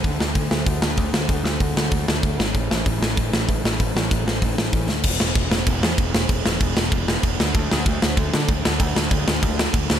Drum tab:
CC |--------|--------|--------|--------|
HH |o-o-o-o-|o-o-o-o-|o-o-o-o-|o-o-o-o-|
SD |-o-o-o-o|-o-o-o-o|-o-o-o-o|-o-o-o-o|
BD |o-o-o-o-|o-o-o-o-|o-o-o-o-|o-o-o-o-|

CC |x-x-x-x-|x-x-x-x-|x-x-x-x-|x-x-x-x-|
HH |--------|--------|--------|--------|
SD |-o-o-o-o|-o-o-o-o|-o-o-o-o|-o-o-o-o|
BD |o-o-o-o-|o-o-o-o-|o-o-o-o-|o-o-o-o-|